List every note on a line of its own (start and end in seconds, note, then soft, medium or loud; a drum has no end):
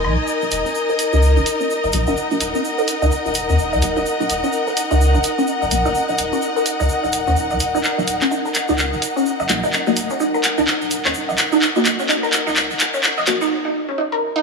0.00 13.51 D#4 medium
0.00 13.51 A#4 medium
0.00 13.51 D#5 medium
0.00 1.68 G#5 medium
0.04 0.16 A#1 loud
0.04 closed hi-hat medium
0.04 claves medium
0.04 low woodblock soft
0.27 shaker medium
0.42 0.47 A#3 medium
0.42 0.46 D#4 medium
0.42 0.47 F#4 medium
0.42 0.47 D#5 medium
0.42 shaker soft
0.51 0.63 D#1 medium
0.51 closed hi-hat medium
0.51 shaker medium
0.66 0.68 C#4 medium
0.66 shaker soft
0.75 shaker soft
0.89 0.94 A#4 medium
0.89 shaker soft
0.99 closed hi-hat medium
0.99 shaker medium
1.13 1.38 C#2 loud
1.13 1.17 D#4 loud
1.13 shaker soft
1.22 shaker soft
1.37 1.44 D#1 medium
1.37 1.41 D#4 medium
1.37 shaker soft
1.46 closed hi-hat medium
1.46 shaker medium
1.60 1.63 C#4 medium
1.60 shaker soft
1.70 shaker soft
1.84 1.92 F#1 medium
1.84 1.90 D#5 medium
1.84 shaker soft
1.93 2.05 A#1 loud
1.93 2.01 A#3 medium
1.93 2.01 F#4 medium
1.93 2.01 D#5 loud
1.93 closed hi-hat medium
1.93 shaker medium
2.03 13.51 F#5 medium
2.03 shaker soft
2.07 2.15 F#1 medium
2.07 2.12 D#4 loud
2.17 shaker medium
2.31 2.36 A#3 medium
2.31 2.36 D#4 medium
2.31 2.36 F#4 medium
2.31 2.36 D#5 medium
2.31 shaker soft
2.40 2.52 D#1 medium
2.40 closed hi-hat medium
2.40 shaker medium
2.55 2.57 C#4 medium
2.55 shaker soft
2.65 shaker medium
2.78 2.83 A#4 medium
2.78 shaker soft
2.88 closed hi-hat loud
2.88 shaker medium
3.02 3.10 C#2 loud
3.02 3.06 D#4 loud
3.02 shaker soft
3.11 shaker medium
3.26 3.33 D#1 loud
3.26 3.30 D#4 medium
3.26 shaker soft
3.35 3.47 D#1 medium
3.35 closed hi-hat medium
3.35 shaker medium
3.49 3.57 D#2 medium
3.49 3.52 C#4 medium
3.49 shaker soft
3.59 3.74 D#1 medium
3.59 shaker soft
3.73 3.81 D#2 loud
3.73 3.79 D#5 medium
3.73 shaker soft
3.82 3.94 D#1 loud
3.82 3.90 A#3 medium
3.82 3.90 F#4 medium
3.82 3.90 D#5 loud
3.82 closed hi-hat medium
3.82 shaker medium
3.96 4.04 D#1 medium
3.96 4.01 D#4 medium
3.96 shaker soft
4.06 shaker medium
4.20 4.25 A#3 medium
4.20 4.24 D#4 medium
4.20 4.25 F#4 medium
4.20 shaker soft
4.30 4.41 D#1 loud
4.30 closed hi-hat medium
4.30 shaker medium
4.44 4.46 C#4 medium
4.44 shaker soft
4.52 shaker soft
4.67 4.72 A#4 medium
4.67 shaker soft
4.77 closed hi-hat medium
4.77 shaker medium
4.91 5.16 C#2 loud
4.91 4.95 D#4 loud
4.91 shaker soft
5.01 shaker medium
5.14 5.22 D#1 medium
5.14 5.19 D#4 medium
5.14 shaker soft
5.24 closed hi-hat medium
5.24 shaker medium
5.38 5.41 C#4 medium
5.38 shaker soft
5.47 shaker medium
5.62 5.70 F#1 medium
5.62 5.68 D#5 medium
5.62 shaker soft
5.71 5.83 A#1 loud
5.71 5.79 A#3 medium
5.71 5.79 F#4 medium
5.71 5.79 D#5 loud
5.71 closed hi-hat medium
5.71 shaker loud
5.85 5.93 F#1 medium
5.85 5.90 D#4 loud
5.85 shaker soft
5.95 shaker medium
6.09 6.14 A#3 medium
6.09 6.13 D#4 medium
6.09 6.14 F#4 medium
6.09 shaker soft
6.18 6.30 D#1 medium
6.18 closed hi-hat medium
6.18 shaker medium
6.33 6.35 C#4 medium
6.33 shaker soft
6.42 shaker medium
6.56 6.61 A#4 medium
6.56 shaker soft
6.66 closed hi-hat medium
6.66 shaker loud
6.80 6.88 C#2 loud
6.80 6.84 D#4 loud
6.80 shaker soft
6.89 shaker medium
7.03 7.11 D#1 loud
7.03 7.08 D#4 medium
7.03 shaker soft
7.13 7.25 D#1 medium
7.13 closed hi-hat medium
7.13 shaker loud
7.27 7.35 D#2 medium
7.27 7.30 C#4 medium
7.27 shaker soft
7.36 7.52 D#1 loud
7.36 shaker medium
7.50 7.58 D#2 loud
7.50 7.57 D#5 medium
7.50 shaker soft
7.60 7.72 D#1 loud
7.60 closed hi-hat medium
7.60 shaker loud
7.74 7.82 D#1 medium
7.74 7.79 D#4 loud
7.74 shaker soft
7.84 clap soft
7.84 shaker soft
7.98 8.03 A#3 medium
7.98 8.02 D#4 medium
7.98 8.03 F#4 medium
7.98 shaker soft
8.07 8.19 D#1 medium
8.07 closed hi-hat medium
8.07 shaker medium
8.21 8.24 C#4 medium
8.21 clap soft
8.21 shaker soft
8.31 8.38 D#4 medium
8.31 shaker medium
8.45 8.50 A#4 medium
8.45 shaker soft
8.55 clap medium
8.55 closed hi-hat medium
8.55 shaker medium
8.68 8.94 C#2 loud
8.68 8.73 D#4 loud
8.68 shaker soft
8.78 clap medium
8.78 shaker soft
8.93 9.00 D#1 medium
8.93 shaker soft
9.02 closed hi-hat medium
9.02 shaker medium
9.16 9.19 C#4 medium
9.16 shaker soft
9.26 shaker soft
9.40 9.47 F#1 loud
9.40 9.46 D#5 medium
9.40 shaker soft
9.49 9.61 A#1 loud
9.49 9.57 A#3 loud
9.49 9.57 F#4 medium
9.49 9.57 D#5 loud
9.49 clap medium
9.49 closed hi-hat medium
9.49 shaker loud
9.63 9.71 F#1 medium
9.63 9.68 D#4 loud
9.63 shaker soft
9.73 clap medium
9.73 shaker medium
9.87 9.92 A#3 medium
9.87 9.91 D#4 medium
9.87 9.92 F#4 medium
9.87 9.92 D#5 medium
9.87 shaker soft
9.96 10.08 D#1 medium
9.96 closed hi-hat medium
9.96 shaker medium
10.10 10.13 C#4 medium
10.10 shaker soft
10.20 10.27 D#4 medium
10.20 shaker soft
10.34 10.39 A#4 medium
10.34 shaker soft
10.44 clap medium
10.44 closed hi-hat medium
10.44 shaker medium
10.58 10.66 C#2 loud
10.58 10.62 D#4 loud
10.58 shaker soft
10.67 clap medium
10.67 shaker soft
10.81 10.89 D#1 loud
10.81 shaker soft
10.91 11.03 D#1 medium
10.91 closed hi-hat medium
10.91 shaker medium
11.05 11.13 D#2 medium
11.05 11.08 C#4 medium
11.05 clap medium
11.05 shaker soft
11.14 11.30 D#1 loud
11.14 shaker medium
11.29 11.36 D#2 loud
11.29 11.35 D#5 medium
11.29 shaker soft
11.38 11.50 D#1 loud
11.38 clap medium
11.38 closed hi-hat medium
11.38 shaker medium
11.52 11.60 D#1 medium
11.52 11.57 D#4 loud
11.52 shaker soft
11.62 clap medium
11.62 shaker medium
11.76 11.81 A#3 medium
11.76 11.80 D#4 medium
11.76 11.81 F#4 medium
11.76 11.81 D#5 medium
11.76 shaker soft
11.85 11.97 D#1 loud
11.85 clap medium
11.85 closed hi-hat medium
11.85 shaker medium
11.99 12.02 C#4 medium
11.99 shaker soft
12.09 12.16 D#4 medium
12.09 clap medium
12.09 shaker medium
12.23 12.28 A#4 medium
12.23 shaker soft
12.33 clap medium
12.33 closed hi-hat medium
12.33 shaker medium
12.47 12.72 C#2 loud
12.47 12.51 D#4 loud
12.47 shaker soft
12.56 clap medium
12.56 shaker medium
12.70 12.78 D#1 medium
12.70 shaker soft
12.80 clap medium
12.80 closed hi-hat medium
12.80 shaker medium
12.94 12.97 C#4 medium
12.94 shaker soft
13.03 clap medium
13.03 shaker medium
13.17 13.25 F#1 loud
13.17 13.24 D#5 medium
13.17 shaker soft
13.27 13.39 A#1 loud
13.27 13.35 A#3 loud
13.27 13.35 F#4 medium
13.27 13.35 D#5 loud
13.27 clap medium
13.27 closed hi-hat medium
13.27 shaker medium
13.41 13.49 F#1 medium
13.41 13.46 D#4 loud
13.41 shaker soft
13.65 13.69 D#4 medium
13.89 13.91 C#4 medium
13.98 14.05 D#4 medium
14.12 14.17 A#4 medium
14.36 14.40 D#4 loud